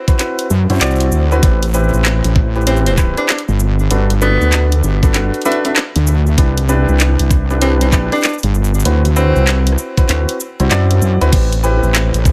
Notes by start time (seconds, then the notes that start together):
0.08 C4 E4 F#4 B4, kick, closed hi-hat, shaker
0.19 C4 E4 F#4 B4, clap, closed hi-hat, shaker
0.39 closed hi-hat, shaker
0.50 F#2, shaker
0.70 F#2 C4 E4 F#4 C5, closed hi-hat, shaker
0.73 shaker
0.75 shaker
0.78 clap, closed hi-hat, shaker
0.81 C2 C4 E4 F#4 D5, shaker
0.86 shaker
0.91 shaker
0.96 shaker
1.00 closed hi-hat, shaker
1.12 D2, shaker
1.32 C4 E4 F#4 B4, shaker
1.43 A1 C4 E4 G4 B4, kick, closed hi-hat, shaker
1.63 closed hi-hat, shaker
1.65 shaker
1.68 shaker
1.71 shaker
1.74 C4 E4 G4 B4, shaker
1.84 shaker
1.89 shaker
1.93 A1, shaker
2.05 clap, closed hi-hat, shaker
2.24 A1, closed hi-hat, shaker
2.36 kick, cross-stick
2.55 C4 E4 G4 B4, shaker
2.61 shaker
2.67 C4 E4 G4 B4, closed hi-hat, shaker
2.77 shaker
2.86 C4, closed hi-hat, shaker
2.98 C4 E4 G4 B4, kick, clap, shaker
3.17 C4 D4 E4 G4 B4, cross-stick, closed hi-hat, shaker
3.29 D4, clap, closed hi-hat, shaker
3.38 closed hi-hat
3.48 G1, shaker
3.60 shaker
3.79 shaker
3.91 G1 D4 F#4 A4 B4, closed hi-hat, shaker
4.10 closed hi-hat, shaker
4.22 B3 D4 F#4 A4 B4, shaker
4.41 D2, shaker
4.52 clap, closed hi-hat, shaker
4.72 closed hi-hat, shaker
4.83 G1, shaker
5.03 D4 F#4 A4 B4, kick, shaker
5.14 D4 F#4 A4 B4, clap, closed hi-hat, shaker
5.34 closed hi-hat, shaker
5.42 D4 E4 F#4 A4 B4, closed hi-hat, shaker
5.52 closed hi-hat
5.65 D4 E4 F#4 A4 B4, closed hi-hat, shaker
5.76 clap, closed hi-hat, shaker
5.96 D2, closed hi-hat, shaker
6.07 shaker
6.27 shaker
6.38 C2 D4 E4 G4 B4, kick, closed hi-hat, shaker
6.58 closed hi-hat, shaker
6.69 D4 E4 G4 B4, shaker
6.88 C2, shaker
7.00 clap, closed hi-hat, shaker
7.19 C2, closed hi-hat, shaker
7.31 kick, cross-stick, shaker
7.50 D4 E4 G4 B4, shaker
7.62 C4 D4 E4 G4 B4, closed hi-hat, shaker
7.81 B1 C4, closed hi-hat, shaker
7.92 D4 E4 G4 B4, kick, clap, shaker
8.12 D4 E4 G4 B4, cross-stick, closed hi-hat, shaker
8.15 shaker
8.18 shaker
8.21 clap, closed hi-hat, shaker
8.23 D4, shaker
8.28 shaker
8.33 shaker
8.38 shaker
8.43 G1, closed hi-hat, shaker
8.55 shaker
8.64 shaker
8.74 shaker
8.80 shaker
8.85 D2 C4 E4 F#4 B4, closed hi-hat, shaker
9.05 closed hi-hat, shaker
9.16 C4 E4 F#4 B4, shaker
9.36 C2, shaker
9.47 clap, closed hi-hat, shaker
9.67 closed hi-hat, shaker
9.72 cross-stick
9.78 shaker
9.97 C4 E4 F#4 B4, kick, closed hi-hat, shaker
10.09 D2 C4 E4 F#4 B4, clap, closed hi-hat, shaker
10.29 closed hi-hat, shaker
10.40 shaker
10.60 C2 C4 E4 F#4 C5, closed hi-hat, shaker
10.71 F#2 C4 E4 F#4 D5, clap, closed hi-hat, shaker
10.91 closed hi-hat
11.02 F#2, shaker
11.21 D2 C4 E4 F#4 B4, closed hi-hat, shaker
11.32 A1 E4 B4, kick, closed hi-hat, crash, shaker
11.52 closed hi-hat, shaker
11.63 C4 E4 G4 B4, shaker
11.83 A1, shaker
11.95 clap, closed hi-hat, shaker
12.14 A1, closed hi-hat, shaker
12.25 kick, cross-stick, shaker